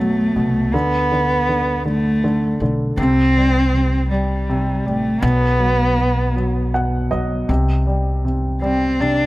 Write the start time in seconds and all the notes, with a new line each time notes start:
Already playing: B1 B2 A3
0.00 F#3
0.36 C2 B2
0.74 D2 D3 B3
1.11 D3
1.49 D3
1.85 D3 A3
2.24 D3
2.60 B1 D3
2.97 C2 C3 C4
3.37 G3
3.74 C3
4.10 G3
4.49 C3
4.85 A1 G3 A3
5.22 B1 B2 B3
5.59 F#3
5.98 B2
6.36 F#3
6.74 B2 F#5
7.11 B1 F#3 D#5
7.49 C2 C3
7.87 G3
8.25 C3
8.62 G3 C4
9.00 C3 D4